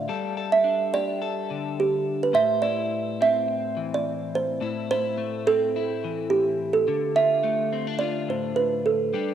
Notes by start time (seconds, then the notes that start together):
Already playing: D5
0.09 G3 A4
0.37 A4
0.52 E5
0.64 D4
0.94 G4 D5
1.22 A4
1.50 D3
1.80 G4
2.23 B4
2.33 A2 C5 E5
2.62 E4 D5
3.21 C4 E5
3.48 muted clean electric guitar stroke
3.77 E3
3.94 D5
4.35 C5
4.61 A2 E4
4.91 E4 C5
5.18 A3
5.47 C4 A4
5.76 E4
6.04 E3
6.30 G4
6.73 A4
6.88 D3, muted clean electric guitar stroke
7.16 F4 E5
7.44 A3
7.73 C4
7.87 D4
7.99 F4 D5
8.28 A2 C5
8.56 B4
8.86 A4
9.13 G3 D4 G4